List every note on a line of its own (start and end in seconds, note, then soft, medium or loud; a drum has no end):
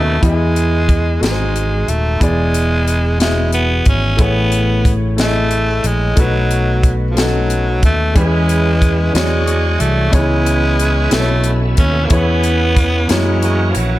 0.00 0.20 D#2 medium
0.00 0.19 B2 medium
0.00 0.19 D#3 medium
0.00 0.23 A3 medium
0.00 0.19 B3 soft
0.00 0.20 B3 medium
0.00 0.20 C#4 medium
0.00 0.24 F#4 medium
0.00 0.24 D#5 medium
0.00 0.24 A5 medium
0.20 1.18 E2 medium
0.20 1.17 E3 soft
0.20 1.18 G#3 medium
0.20 1.00 B3 medium
0.20 1.00 E4 medium
0.20 0.29 G4 soft
0.20 1.02 D#5 medium
0.20 kick medium
0.20 closed hi-hat medium
0.29 1.04 G#4 medium
0.56 closed hi-hat soft
0.89 kick medium
0.89 closed hi-hat soft
1.20 1.84 G#1 medium
1.20 2.17 G#2 medium
1.20 1.90 G#3 medium
1.20 2.00 F#4 soft
1.20 2.00 G#4 soft
1.20 1.23 A4 medium
1.20 1.29 A4 soft
1.20 snare medium
1.20 closed hi-hat medium
1.30 2.04 C5 medium
1.56 closed hi-hat soft
1.88 2.18 D#1 medium
1.88 2.23 A3 medium
1.88 closed hi-hat soft
2.20 3.82 E1 medium
2.20 3.16 E3 medium
2.20 3.20 G#3 medium
2.20 2.98 B3 medium
2.20 2.99 E4 medium
2.20 3.00 G#4 medium
2.20 3.00 D5 medium
2.20 kick medium
2.20 closed hi-hat medium
2.54 closed hi-hat soft
2.88 closed hi-hat soft
3.18 3.51 G#3 medium
3.18 3.97 B3 medium
3.18 3.98 E4 soft
3.18 3.27 F#4 soft
3.18 3.99 E5 medium
3.18 snare medium
3.18 closed hi-hat medium
3.27 4.02 G#4 soft
3.53 3.84 B3 medium
3.53 closed hi-hat soft
3.86 4.17 G#1 medium
3.86 4.22 C#4 medium
3.86 kick medium
3.86 closed hi-hat soft
4.17 5.80 A1 medium
4.17 5.14 A2 medium
4.17 4.96 A3 medium
4.17 4.92 B3 loud
4.17 4.97 E4 medium
4.17 4.98 G#4 medium
4.17 4.98 C#5 medium
4.17 kick medium
4.17 closed hi-hat medium
4.52 closed hi-hat soft
4.85 kick medium
4.85 closed hi-hat soft
5.16 5.95 A3 medium
5.16 5.88 A3 medium
5.16 5.96 E4 medium
5.16 5.97 G#4 medium
5.16 5.97 D#5 medium
5.16 snare loud
5.16 closed hi-hat medium
5.51 closed hi-hat soft
5.84 6.15 A#1 medium
5.84 6.21 G#3 medium
5.84 closed hi-hat soft
6.16 7.83 B1 medium
6.16 7.13 B2 medium
6.16 6.93 F#3 medium
6.16 6.95 A3 medium
6.16 6.95 D#4 medium
6.16 6.96 F#4 medium
6.16 6.96 B4 medium
6.16 kick medium
6.16 closed hi-hat medium
6.51 closed hi-hat medium
6.83 kick medium
6.83 closed hi-hat soft
7.10 7.21 F3 medium
7.15 7.94 A3 medium
7.15 7.22 C#4 soft
7.15 7.95 F#4 soft
7.15 7.95 A4 medium
7.15 snare loud
7.15 closed hi-hat medium
7.19 7.84 F#3 medium
7.19 7.97 D#4 soft
7.50 closed hi-hat soft
7.83 8.13 D#2 medium
7.83 8.14 A3 medium
7.83 kick medium
7.83 closed hi-hat soft
8.14 9.11 E2 medium
8.14 9.10 E3 medium
8.14 9.15 E3 medium
8.14 8.93 G#3 medium
8.14 9.11 G#3 medium
8.14 9.15 B3 soft
8.14 8.93 C#4 medium
8.14 9.15 C#4 soft
8.14 8.94 E4 medium
8.14 9.14 G#4 medium
8.14 8.95 B4 medium
8.14 kick medium
8.14 closed hi-hat medium
8.49 closed hi-hat soft
8.82 kick medium
8.82 closed hi-hat soft
9.12 9.77 E2 medium
9.12 10.09 E3 soft
9.12 10.14 F#3 medium
9.12 9.91 G#3 medium
9.12 9.82 G#3 medium
9.12 9.92 D4 soft
9.12 10.14 D4 soft
9.12 9.93 F#4 soft
9.12 10.14 G#4 medium
9.12 10.14 C#5 soft
9.12 9.93 C#5 medium
9.12 closed hi-hat medium
9.16 snare loud
9.47 closed hi-hat soft
9.80 10.11 C2 medium
9.80 10.16 A3 medium
9.80 closed hi-hat soft
10.11 11.08 C#2 medium
10.11 11.08 C#3 medium
10.11 11.13 E3 medium
10.11 11.15 G#3 medium
10.11 10.90 B3 medium
10.11 11.11 B3 soft
10.11 11.11 C#4 soft
10.11 10.19 D#4 soft
10.11 10.91 G#4 medium
10.11 10.92 C#5 medium
10.11 kick medium
10.11 closed hi-hat medium
10.15 10.94 E4 medium
10.15 11.13 G#4 medium
10.46 closed hi-hat medium
10.80 closed hi-hat soft
11.10 11.74 B1 medium
11.10 12.07 B2 medium
11.10 11.52 A3 medium
11.10 11.89 B3 medium
11.10 12.11 B3 soft
11.10 12.11 C#4 soft
11.10 11.89 E4 medium
11.10 12.11 E4 medium
11.10 12.11 A4 medium
11.10 11.90 A4 medium
11.10 snare loud
11.10 closed hi-hat medium
11.14 11.19 B4 soft
11.20 11.94 C#5 medium
11.44 closed hi-hat soft
11.77 12.09 D#2 medium
11.77 12.07 C#4 medium
11.77 kick medium
11.77 closed hi-hat soft
12.05 12.13 A#3 medium
12.09 13.06 E2 medium
12.09 13.06 E3 medium
12.09 13.08 E3 medium
12.09 12.88 B3 medium
12.09 13.12 B3 loud
12.09 13.10 B3 medium
12.09 13.08 C#4 soft
12.09 12.89 E4 medium
12.09 12.18 F#4 medium
12.09 12.90 G#4 medium
12.09 12.90 C#5 medium
12.09 kick loud
12.09 closed hi-hat medium
12.18 13.14 G#4 medium
12.43 closed hi-hat soft
12.77 kick medium
12.77 closed hi-hat soft
13.08 13.72 F#2 medium
13.08 13.99 E3 medium
13.08 13.43 G#3 medium
13.08 13.87 A#3 medium
13.08 13.99 A#3 soft
13.08 13.99 C#4 soft
13.08 13.88 E4 medium
13.08 13.16 F4 soft
13.08 13.88 F#4 medium
13.08 13.89 C#5 medium
13.08 snare loud
13.08 closed hi-hat medium
13.16 13.99 F#4 medium
13.43 13.72 G#3 medium
13.43 closed hi-hat soft
13.71 13.79 F3 medium
13.71 closed hi-hat soft
13.76 13.99 A#1 medium
13.76 13.99 F#3 medium